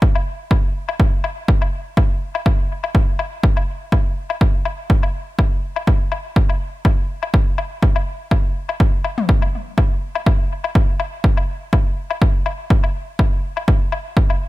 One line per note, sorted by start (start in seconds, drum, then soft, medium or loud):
0.02 kick loud
0.15 low woodblock soft
0.51 kick loud
0.51 low woodblock soft
0.89 low woodblock soft
1.00 kick loud
1.24 low woodblock soft
1.48 kick loud
1.62 low woodblock soft
1.97 kick loud
1.97 low woodblock soft
2.35 low woodblock soft
2.46 kick loud
2.46 low woodblock soft
2.84 low woodblock soft
2.95 kick loud
3.19 low woodblock soft
3.43 kick loud
3.57 low woodblock soft
3.92 kick loud
3.92 low woodblock soft
4.30 low woodblock soft
4.41 kick loud
4.65 low woodblock soft
4.90 kick medium
5.03 low woodblock soft
5.39 kick loud
5.39 low woodblock soft
5.76 low woodblock soft
5.87 kick medium
6.12 low woodblock soft
6.36 kick loud
6.50 low woodblock soft
6.85 kick loud
6.85 low woodblock soft
7.23 low woodblock soft
7.34 kick loud
7.58 low woodblock soft
7.83 kick medium
7.96 low woodblock soft
8.31 kick loud
8.31 low woodblock soft
8.69 low woodblock soft
8.80 kick loud
9.04 low woodblock soft
9.18 mid tom medium
9.29 kick loud
9.42 low woodblock soft
9.78 kick medium
9.78 low woodblock soft
10.15 low woodblock soft
10.26 kick loud
10.26 low woodblock soft
10.64 low woodblock soft
10.75 kick loud
11.00 low woodblock soft
11.24 kick loud
11.37 low woodblock soft
11.73 kick loud
11.73 low woodblock soft
12.11 low woodblock soft
12.22 kick loud
12.46 low woodblock soft
12.70 kick loud
12.84 low woodblock soft
13.19 kick loud
13.19 low woodblock soft
13.57 low woodblock soft
13.68 kick loud
13.92 low woodblock soft
14.17 kick loud
14.30 low woodblock soft